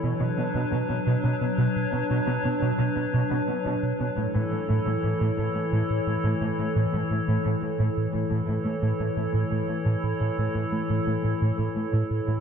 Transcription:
<<
  \new Staff \with { instrumentName = "Ambient pad" } { \time 6/8 \key a \mixolydian \tempo 4. = 58 <fis d' b' cis''>2.~ | <fis d' b' cis''>2. | <e e' a' cis''>2.~ | <e e' a' cis''>2. |
<e e' a' cis''>2.~ | <e e' a' cis''>2. | }
  \new Staff \with { instrumentName = "Analog synth bass" } { \clef bass \time 6/8 \key a \mixolydian b,16 b,16 b16 b,16 b,16 b,16 b,16 b,16 b16 b,16 b,16 b,16 | b,16 b,16 b16 b,16 b,16 b,16 b,16 b,16 b16 b,16 b,16 b,16 | a,16 a,16 a16 a,16 a,16 a,16 a,16 a,16 a16 a,16 a,16 a,16 | a,16 a,16 a16 a,16 a,16 a,16 a,16 a,16 a16 a,16 a,16 a,16 |
a,16 a,16 a16 a,16 a,16 a,16 a,16 a,16 a16 a,16 a,16 a,16 | a,16 a,16 a16 a,16 a,16 a,16 a,16 a,16 a16 a,16 a,16 a,16 | }
  \new Staff \with { instrumentName = "Cello section" } { \clef bass \time 6/8 \key a \mixolydian b,16 b,16 b,16 b,16 b,16 b,16 b,16 b,16 b,16 b,16 r16 b,16 | b,16 b,16 b,16 b,16 b,16 b,16 b,16 b,16 b,16 b,16 r16 b,16 | a,16 a,16 a,16 a,16 a,16 a,16 a,16 a,16 a,16 a,16 r16 a,16 | a,16 a,16 a,16 a,16 a,16 a,16 a,16 a,16 a,16 a,16 r16 a,16 |
a,16 a,16 a,16 a,16 a,16 a,16 a,16 a,16 a,16 a,16 r16 a,16 | a,16 a,16 a,16 a,16 a,16 a,16 a,16 a,16 a,16 a,16 r16 a,16 | }
>>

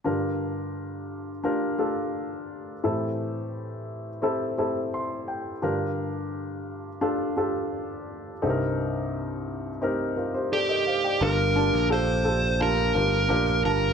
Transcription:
<<
  \new Staff \with { instrumentName = "Lead electric guitar" } { \time 4/4 \key g \minor \tempo 4 = 86 r1 | r1 | r1 | r2. g'4 |
bes'4 c''4 bes'4. bes'8 | }
  \new Staff \with { instrumentName = "Upright piano" } { \time 4/4 \key g \minor << { r1 | r2. c'''8 g''8 | r1 | r2 r8 <f' bes'>16 <g' c''>16 <a' d''>16 <bes' ees''>16 <c'' f''>16 <d'' g''>16~ |
<d'' g''>16 r2. r8. | } \\ { <d' f' g' bes'>2 <d' f' g' bes'>8 <d' f' g' a'>4. | <c' e' g' a'>2 <c' e' g' a'>8 <c' e' g' a'>4. | <d' f' g' bes'>2 <d' f' g' a'>8 <d' f' g' a'>4. | <c' ees' g' a' bes'>2 <c' ees' g' bes'>8 r4. |
<d' f' g' bes'>8 <d' f' g' a''>8 <d' f' g' a'>8 <d' f' g' a'>8 <d' f' g' a''>8 <d' f' g' bes'>8 <d' f' g' bes'>8 <d' f' g' a''>8 | } >> }
  \new Staff \with { instrumentName = "Upright piano" } { \clef bass \time 4/4 \key g \minor <g, d>1 | <a, e>1 | <g, d>1 | <c, g,>1 |
<g, d>4. r2 r8 | }
  \new Staff \with { instrumentName = "Picked electric bass" } { \clef bass \time 4/4 \key g \minor r1 | r1 | r1 | r1 |
g,,8. bes,,4.~ bes,,16 g,,8 bes,,8 g,,8 | }
>>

